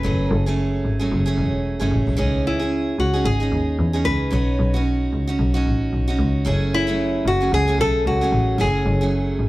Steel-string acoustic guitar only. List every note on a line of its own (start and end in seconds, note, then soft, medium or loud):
0.03 0.47 F#3 soft
0.03 0.47 A3 medium
0.03 0.46 C#4 medium
0.03 0.45 G#4 medium
0.46 1.00 F#3 soft
0.46 1.00 A3 soft
0.46 1.00 C#4 medium
0.46 0.99 G#4 medium
0.99 1.27 F#3 soft
0.99 1.26 A3 soft
0.99 1.26 C#4 soft
0.99 1.24 G#4 soft
1.26 1.81 F#3 soft
1.26 1.80 A3 medium
1.26 1.80 C#4 medium
1.26 1.79 G#4 medium
1.80 2.16 F#3 soft
1.80 2.17 A3 medium
1.80 2.16 C#4 medium
1.80 2.18 G#4 medium
2.17 2.60 E3 medium
2.17 2.61 C#4 medium
2.17 2.61 D#4 medium
2.17 2.58 G#4 medium
2.60 3.15 C#4 soft
2.60 3.12 G#4 medium
3.13 3.41 C#4 soft
3.13 3.40 D#4 soft
3.13 3.39 G#4 medium
3.40 3.95 C#4 soft
3.40 3.94 D#4 soft
3.40 3.92 G#4 soft
3.93 4.30 C#4 soft
3.93 4.31 D#4 soft
3.93 4.31 G#4 medium
4.31 4.74 F#3 soft
4.31 4.74 C#4 medium
4.31 4.74 D#4 medium
4.31 4.73 F#4 medium
4.74 5.29 C#4 medium
4.74 5.28 D#4 medium
4.74 5.27 F#4 medium
5.27 5.55 C#4 soft
5.27 5.54 D#4 medium
5.27 5.53 F#4 medium
5.54 6.10 C#4 soft
5.54 6.08 D#4 medium
5.54 6.07 F#4 medium
6.08 6.45 C#4 soft
6.08 6.46 D#4 medium
6.08 6.45 F#4 medium
6.45 6.88 F#3 medium
6.45 6.88 A3 medium
6.45 6.87 C#4 medium
6.45 6.86 G#4 medium
6.87 7.42 F#3 soft
6.87 7.41 A3 medium
6.87 7.41 C#4 medium
6.87 7.40 G#4 soft
7.41 7.69 F#3 soft
7.41 7.68 A3 soft
7.41 7.67 C#4 soft
7.41 7.66 G#4 soft
7.68 8.23 F#3 soft
7.68 8.22 A3 soft
7.68 8.22 C#4 medium
7.68 8.21 G#4 medium
8.21 8.57 F#3 soft
8.21 8.58 A3 soft
8.21 8.59 C#4 soft
8.21 8.59 G#4 soft
8.58 9.02 F#3 soft
8.58 9.02 A3 medium
8.58 9.01 C#4 medium
8.58 9.00 G#4 medium
9.01 9.49 F#3 soft
9.01 9.49 A3 soft
9.01 9.49 C#4 soft
9.01 9.49 G#4 soft